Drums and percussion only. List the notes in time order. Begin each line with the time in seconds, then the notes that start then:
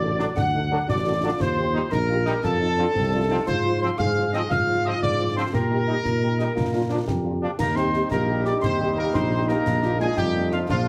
0.20 snare
0.37 concert bass drum, snare
0.89 concert bass drum, snare
1.40 concert bass drum, snare
1.92 concert bass drum, snare
2.26 snare
2.44 concert bass drum, snare
2.95 concert bass drum, snare
3.47 concert bass drum, snare, crash
3.99 concert bass drum, snare
4.33 snare
4.50 concert bass drum, snare
5.02 concert bass drum, snare
5.54 concert bass drum, snare
6.05 concert bass drum, snare
6.39 snare
6.57 concert bass drum, snare
7.08 concert bass drum, snare
7.59 concert bass drum, snare, crash
7.76 snare
7.94 snare
8.11 concert bass drum, snare
8.45 snare
8.63 concert bass drum, snare
9.14 concert bass drum, snare
9.49 snare
9.66 concert bass drum, snare, crash
9.83 snare
10.00 snare
10.17 concert bass drum, snare
10.52 snare
10.69 concert bass drum, snare